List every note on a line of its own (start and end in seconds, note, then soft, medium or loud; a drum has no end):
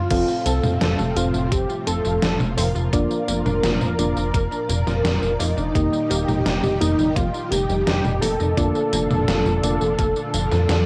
0.00 0.42 F4 medium
0.10 0.25 F1 loud
0.10 2.90 A2 medium
0.10 2.90 C3 medium
0.10 0.18 F3 loud
0.10 5.71 F3 medium
0.10 2.90 C4 medium
0.10 1.12 C4 medium
0.10 5.71 F4 medium
0.10 1.12 F4 medium
0.10 1.12 A4 medium
0.10 1.12 F5 loud
0.10 kick loud
0.10 closed hi-hat loud
0.10 tambourine soft
0.10 crash loud
0.28 0.41 A3 medium
0.28 tambourine soft
0.46 0.60 C2 medium
0.46 0.58 C4 loud
0.46 0.60 A4 medium
0.46 closed hi-hat medium
0.46 tambourine medium
0.63 0.78 F1 medium
0.63 0.76 F4 medium
0.63 mid tom medium
0.63 tambourine soft
0.81 0.96 F1 loud
0.81 0.93 C4 medium
0.81 1.18 A4 loud
0.81 snare loud
0.81 closed hi-hat medium
0.81 tambourine soft
0.99 1.13 F1 medium
0.99 1.11 A3 medium
0.99 snare soft
0.99 mid tom medium
0.99 tambourine soft
1.16 1.31 F1 medium
1.16 1.33 F3 medium
1.16 1.46 C4 medium
1.16 1.46 F4 medium
1.16 1.53 F4 medium
1.16 1.46 A4 medium
1.16 1.46 F5 loud
1.16 closed hi-hat medium
1.16 tambourine medium
1.34 1.49 F1 medium
1.34 1.41 A3 medium
1.34 tambourine soft
1.51 1.66 F1 loud
1.51 1.59 C4 loud
1.51 1.86 G4 loud
1.51 kick loud
1.51 closed hi-hat loud
1.51 tambourine soft
1.69 1.82 F4 medium
1.69 tambourine soft
1.87 2.02 F1 medium
1.87 1.94 C4 medium
1.87 2.20 A4 loud
1.87 closed hi-hat medium
1.87 tambourine medium
2.05 2.19 F1 medium
2.05 2.17 A3 medium
2.05 tambourine soft
2.22 2.37 F1 loud
2.22 2.35 F3 medium
2.22 2.36 A4 medium
2.22 snare loud
2.22 closed hi-hat loud
2.22 tambourine soft
2.40 2.55 F1 medium
2.40 2.47 A3 medium
2.40 mid tom medium
2.40 tambourine soft
2.57 2.72 F1 loud
2.57 2.70 C4 loud
2.57 5.41 A#4 loud
2.57 open hi-hat medium
2.57 tambourine medium
2.75 2.90 F1 medium
2.75 2.83 F4 medium
2.75 tambourine soft
2.93 3.07 F1 loud
2.93 8.54 A#2 medium
2.93 3.00 D3 loud
2.93 3.95 A#3 medium
2.93 3.95 D4 medium
2.93 3.95 F4 medium
2.93 5.72 D5 medium
2.93 3.95 D5 loud
2.93 kick loud
2.93 closed hi-hat loud
2.93 tambourine soft
3.10 3.23 F3 medium
3.10 tambourine soft
3.28 3.43 F1 medium
3.28 3.40 A#3 loud
3.28 closed hi-hat medium
3.28 tambourine medium
3.46 3.60 F1 medium
3.46 3.58 D4 medium
3.46 mid tom medium
3.46 tambourine soft
3.63 3.78 F1 loud
3.63 3.76 A#3 medium
3.63 snare loud
3.63 closed hi-hat loud
3.63 tambourine soft
3.81 3.96 F1 medium
3.81 3.93 F3 medium
3.81 mid tom medium
3.81 tambourine soft
3.99 4.13 F1 medium
3.99 4.15 D3 medium
3.99 4.28 A#3 loud
3.99 4.28 D4 medium
3.99 4.28 F4 medium
3.99 4.28 D5 loud
3.99 closed hi-hat medium
3.99 tambourine medium
4.16 4.31 F1 medium
4.16 4.24 F3 medium
4.16 tambourine soft
4.34 4.49 F1 loud
4.34 4.41 A#3 loud
4.34 kick loud
4.34 closed hi-hat loud
4.34 tambourine soft
4.51 4.64 D4 medium
4.51 tambourine soft
4.69 4.84 F1 medium
4.69 4.77 A#3 medium
4.69 closed hi-hat medium
4.69 tambourine medium
4.87 5.02 F1 medium
4.87 4.99 F3 medium
4.87 snare soft
4.87 tambourine soft
5.04 5.19 F1 loud
5.04 5.17 D3 medium
5.04 snare loud
5.04 closed hi-hat loud
5.04 tambourine soft
5.22 5.37 F1 medium
5.22 5.30 F3 medium
5.22 tambourine soft
5.39 5.54 F1 loud
5.39 5.52 A#3 loud
5.39 6.11 D#4 loud
5.39 open hi-hat medium
5.39 tambourine medium
5.57 5.72 F1 medium
5.57 5.65 D4 medium
5.57 tambourine soft
5.75 5.90 F1 loud
5.75 5.82 D#3 loud
5.75 8.55 D#3 medium
5.75 8.55 G3 medium
5.75 6.77 A#3 medium
5.75 6.77 D#4 medium
5.75 8.55 D#4 medium
5.75 6.77 G4 medium
5.75 8.55 G4 medium
5.75 6.77 D#5 loud
5.75 kick loud
5.75 closed hi-hat loud
5.75 tambourine soft
5.93 6.05 G3 medium
5.93 tambourine soft
6.10 6.25 D#1 medium
6.10 6.23 A#3 loud
6.10 6.45 G4 loud
6.10 closed hi-hat medium
6.10 tambourine medium
6.28 6.43 F1 medium
6.28 6.41 D#4 medium
6.28 mid tom medium
6.28 tambourine soft
6.45 6.60 F1 loud
6.45 6.58 A#3 medium
6.45 6.78 G4 loud
6.45 snare loud
6.45 closed hi-hat loud
6.45 tambourine soft
6.63 6.78 F1 medium
6.63 6.76 G3 medium
6.63 snare soft
6.63 mid tom medium
6.63 tambourine soft
6.81 6.96 F1 medium
6.81 6.98 D#3 medium
6.81 7.10 A#3 loud
6.81 7.17 D#4 loud
6.81 7.10 D#4 medium
6.81 7.10 G4 medium
6.81 7.10 D#5 loud
6.81 closed hi-hat medium
6.81 tambourine medium
6.99 7.13 F1 medium
6.99 7.06 G3 medium
6.99 tambourine soft
7.16 7.31 F1 loud
7.16 7.24 A#3 loud
7.16 7.52 F4 loud
7.16 kick loud
7.16 closed hi-hat loud
7.16 tambourine soft
7.34 7.46 D#4 medium
7.34 tambourine soft
7.51 7.66 F1 medium
7.51 7.59 A#3 medium
7.51 7.86 G4 loud
7.51 closed hi-hat medium
7.51 tambourine medium
7.69 7.84 F1 medium
7.69 7.82 G3 medium
7.69 tambourine soft
7.86 8.02 F1 loud
7.86 7.99 D#3 medium
7.86 8.20 G4 loud
7.86 snare loud
7.86 closed hi-hat medium
7.86 tambourine soft
8.04 8.19 F1 medium
8.04 8.12 G3 medium
8.04 mid tom medium
8.04 tambourine soft
8.22 8.37 F1 loud
8.22 8.35 A#3 loud
8.22 10.86 A4 loud
8.22 open hi-hat medium
8.22 tambourine medium
8.40 8.55 F1 medium
8.40 8.47 D#4 medium
8.40 tambourine soft
8.57 8.72 F1 loud
8.57 10.86 A#2 medium
8.57 8.65 D3 loud
8.57 10.86 D3 medium
8.57 10.86 F3 medium
8.57 9.59 A#3 medium
8.57 10.86 D4 medium
8.57 9.59 D4 medium
8.57 9.59 F4 medium
8.57 10.86 F4 medium
8.57 9.59 D5 loud
8.57 kick loud
8.57 closed hi-hat medium
8.57 tambourine soft
8.75 8.88 F3 medium
8.75 tambourine soft
8.93 9.07 F1 medium
8.93 9.05 A#3 loud
8.93 closed hi-hat medium
8.93 tambourine medium
9.10 9.25 F1 medium
9.10 9.23 D4 medium
9.10 mid tom loud
9.10 tambourine soft
9.28 9.43 F1 loud
9.28 9.41 A#3 medium
9.28 snare loud
9.28 closed hi-hat medium
9.28 tambourine soft
9.46 9.60 F1 medium
9.46 9.58 F3 medium
9.46 mid tom medium
9.46 tambourine soft
9.63 9.78 F1 medium
9.63 9.80 D3 medium
9.63 9.93 A#3 loud
9.63 9.93 D4 medium
9.63 9.93 F4 medium
9.63 9.93 D5 loud
9.63 closed hi-hat medium
9.63 tambourine medium
9.81 9.96 F1 medium
9.81 9.89 F3 medium
9.81 tambourine soft
9.99 10.13 F1 loud
9.99 10.06 A#3 loud
9.99 kick loud
9.99 closed hi-hat medium
9.99 tambourine soft
10.16 10.29 D4 medium
10.16 tambourine soft
10.34 10.49 F1 medium
10.34 10.47 F4 medium
10.34 closed hi-hat medium
10.34 tambourine medium
10.51 10.66 F2 medium
10.51 10.59 A#4 medium
10.51 snare soft
10.51 tambourine soft
10.69 10.84 F2 loud
10.69 10.82 A#3 loud
10.69 snare loud
10.69 closed hi-hat medium
10.69 tambourine soft